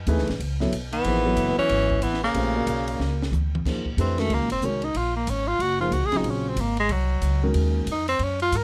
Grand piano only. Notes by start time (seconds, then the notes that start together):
0.08 E3 A3 D#4 G#4 B4
0.61 F#3 B3 E4 A4 C#5
1.05 F3 A#3 D#4 G#4 C5
1.25 F#3 B3 E4 A4 C#5
2.35 A3 C#4 F4 G4 C5
2.56 A#3 F#4 G#4 C#5 D5
3.66 F3 A#3 D#4 G#4 C5
3.98 E3 A3 D4 G4 B4
4.18 D#3 G#3 C#4 F#4 A#4
4.63 D#3 G#3 C#4 F#4 A#4
5.80 F3 A#3 D#4 G#4 C5
6.12 C#3 F#3 C4 F4 G#4
7.43 D#3 G#3 C#4 F#4 A#4